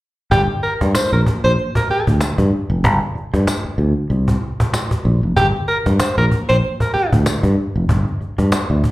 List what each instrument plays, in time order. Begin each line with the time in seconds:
0.31 fingered electric bass G1, tenor saxophone G4, cajon bass
0.50 cajon slap
0.63 tenor saxophone A#4, muted fingered electric bass stroke, cajon slap
0.81 fingered electric bass G2, cajon bass, cajon slap
0.95 tenor saxophone C5, muted fingered electric bass stroke, cajon slap, tambourine
1.12 fingered electric bass A#1, tenor saxophone A#4
1.26 cajon bass
1.44 fingered electric bass A#1, tenor saxophone C5
1.58 cajon slap
1.75 tenor saxophone A#4, cajon bass
1.89 tenor saxophone G4, muted fingered electric bass stroke, cajon slap
2.07 fingered electric bass D2, cajon bass, cajon slap
2.21 cajon slap, tambourine
2.38 fingered electric bass G2, cajon bass, cajon slap
2.70 fingered electric bass F1
2.84 fingered electric bass G1, cajon bass
3.02 cajon slap
3.15 muted fingered electric bass stroke, cajon slap
3.34 fingered electric bass G2, cajon bass, cajon slap
3.47 cajon slap, tambourine
3.65 muted fingered electric bass stroke
3.78 fingered electric bass D2, cajon slap
4.10 fingered electric bass C2, cajon slap
4.28 cajon bass
4.42 cajon slap
4.60 cajon bass
4.74 cajon slap, tambourine
4.91 cajon bass, cajon slap
5.05 fingered electric bass A#1
5.23 fingered electric bass F1
5.36 fingered electric bass G1, tenor saxophone G4, cajon bass
5.55 cajon slap
5.68 tenor saxophone A#4, muted fingered electric bass stroke, cajon slap
5.86 fingered electric bass G2, cajon bass, cajon slap
5.99 tenor saxophone C5, muted fingered electric bass stroke, cajon slap, tambourine
6.18 fingered electric bass A#1, tenor saxophone A#4
6.31 cajon bass
6.49 fingered electric bass A#1, tenor saxophone C5
6.63 cajon slap
6.80 tenor saxophone A#4, cajon bass
6.94 tenor saxophone G4, muted fingered electric bass stroke, cajon slap
7.12 fingered electric bass D2, cajon bass, cajon slap
7.26 cajon slap, tambourine
7.43 fingered electric bass G2, cajon bass, cajon slap
7.76 fingered electric bass F1
7.89 fingered electric bass G1, cajon bass
8.07 cajon slap
8.21 muted fingered electric bass stroke, cajon slap
8.38 fingered electric bass G2, cajon bass, cajon slap
8.52 muted fingered electric bass stroke, cajon slap, tambourine
8.70 fingered electric bass D2
8.84 cajon bass